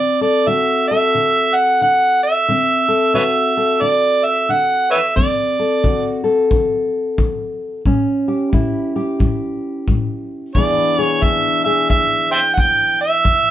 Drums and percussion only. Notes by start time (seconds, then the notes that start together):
5.17 kick
5.84 kick
6.51 kick
7.18 kick
7.85 kick
8.53 kick
9.20 kick
9.88 kick
10.55 kick
11.22 kick
11.90 kick
12.58 kick
13.25 kick